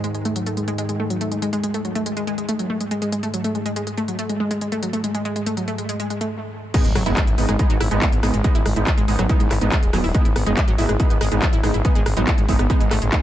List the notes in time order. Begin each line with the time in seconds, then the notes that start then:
Already playing: G#2 D#3
0.04 G#3, closed hi-hat
0.15 G#3, closed hi-hat
0.25 A3, closed hi-hat
0.36 F#3, closed hi-hat
0.46 A3, closed hi-hat
0.57 G#3, closed hi-hat
0.68 G#3, closed hi-hat
0.78 G#3, closed hi-hat
0.89 G#3, closed hi-hat
1.00 A3
1.10 F#3, closed hi-hat
1.21 A3, closed hi-hat
1.32 G#3, closed hi-hat
1.42 G#3, closed hi-hat
1.53 G#3, closed hi-hat
1.64 G#3, closed hi-hat
1.74 A3, closed hi-hat
1.85 F#3, closed hi-hat
1.95 A3, closed hi-hat
2.06 G#3, closed hi-hat
2.17 G#3, closed hi-hat
2.27 G#3, closed hi-hat
2.38 G#3, closed hi-hat
2.49 A3, closed hi-hat
2.59 F#3, closed hi-hat
2.70 A3
2.81 G#3, closed hi-hat
2.91 G#3, closed hi-hat
3.02 G#3, closed hi-hat
3.12 G#3, closed hi-hat
3.23 A3, closed hi-hat
3.34 F#3, closed hi-hat
3.44 A3, closed hi-hat
3.55 G#3, closed hi-hat
3.66 G#3, closed hi-hat
3.76 G#3, closed hi-hat
3.87 G#3, closed hi-hat
3.97 A3, closed hi-hat
4.08 F#3, closed hi-hat
4.19 A3, closed hi-hat
4.29 G#3, closed hi-hat
4.40 G#3
4.51 G#3, closed hi-hat
4.61 G#3, closed hi-hat
4.72 A3, closed hi-hat
4.83 F#3, closed hi-hat
4.93 A3, closed hi-hat
5.04 G#3, closed hi-hat
5.15 G#3, closed hi-hat
5.25 G#3, closed hi-hat
5.36 G#3, closed hi-hat
5.46 A3, closed hi-hat
5.57 F#3, closed hi-hat
5.68 A3, closed hi-hat
5.78 G#3, closed hi-hat
5.89 G#3, closed hi-hat
6.00 G#3, closed hi-hat
6.10 G#3, closed hi-hat
6.21 A3, closed hi-hat
6.74 G#3 B3 D#4, kick, closed hi-hat, crash, impact
6.85 G#1 G#3, closed hi-hat
6.95 G#1 F#3, cross-stick, open hi-hat
7.06 F#1 G#3 B3 D#4 E4, closed hi-hat
7.17 G#3, kick, clap, closed hi-hat
7.27 G#1 E4, closed hi-hat
7.38 G#1 G#3 B3 D#4, open hi-hat
7.49 G#1 G#3, cross-stick, closed hi-hat
7.59 G#3 B3 D#4, kick, closed hi-hat
7.70 G#1 F#3, closed hi-hat
7.80 G#1 E4, cross-stick, open hi-hat
7.91 G#1 G#3 B3 D#4, closed hi-hat
8.02 E4, kick, clap, closed hi-hat
8.12 G#1 B3, closed hi-hat
8.23 G#1 G#3 B3 D#4, cross-stick, open hi-hat
8.34 G#1 G#3, closed hi-hat
8.44 F#3 G#3 B3 D#4, kick, closed hi-hat
8.55 G#1 E4, closed hi-hat
8.66 G#1 G#3, cross-stick, open hi-hat
8.76 G#1 G#3 B3 D#4 E4, closed hi-hat
8.87 B3, kick, clap, closed hi-hat
8.98 G#1 G#3, closed hi-hat
9.08 G#1 G#3 B3 D#4, open hi-hat
9.19 G#1 F#3, cross-stick, closed hi-hat
9.29 G#3 B3 D#4 E4, kick, closed hi-hat
9.40 G#1 G#3, closed hi-hat
9.51 G#1 E4, cross-stick, clap, open hi-hat
9.61 G#1 G#3 B3 D#4, closed hi-hat
9.72 G#3, kick, clap, closed hi-hat
9.83 D#1 G#3, closed hi-hat
9.93 D#1 F#3 G#3 B3 D#4, cross-stick, open hi-hat
10.04 D#1 E4, open hi-hat
10.15 G#3 B3 D#4, kick, closed hi-hat
10.25 G#1 E4, closed hi-hat
10.36 G#1 B3, cross-stick, open hi-hat
10.46 F#1 G#3 B3 D#4, closed hi-hat
10.57 kick, clap, closed hi-hat
10.68 G#1 F#3, closed hi-hat
10.78 G#1 G#3 B3 D#4 E4, open hi-hat
10.89 G#1 G#3, cross-stick, closed hi-hat
11.00 G#3 B3 D#4 E4, kick, closed hi-hat
11.10 G#1 B3, closed hi-hat
11.21 G#1 G#3, cross-stick, open hi-hat
11.32 G#1 G#3 B3 D#4, closed hi-hat
11.42 F#3, kick, clap, closed hi-hat
11.53 G#1 E4, closed hi-hat
11.63 G#1 G#3 B3 D#4, cross-stick, open hi-hat
11.74 G#1 E4, closed hi-hat
11.85 G#3 B3 D#4, kick, closed hi-hat
11.95 G#1 G#3, closed hi-hat
12.06 G#1 G#3, cross-stick, open hi-hat
12.17 G#1 F#3 G#3 B3 D#4, closed hi-hat
12.27 E4, kick, clap, closed hi-hat
12.38 G#1 G#3, closed hi-hat
12.49 G#1 G#3 B3 D#4 E4, kick, open hi-hat
12.59 G#1 B3, cross-stick, closed hi-hat
12.70 G#3 B3 D#4, kick, closed hi-hat
12.80 G#1 G#3, closed hi-hat
12.91 G#1 A3, cross-stick, clap, open hi-hat
13.02 G#1 G#3, closed hi-hat
13.12 G#3 B3 D#4 E4, kick, clap, closed hi-hat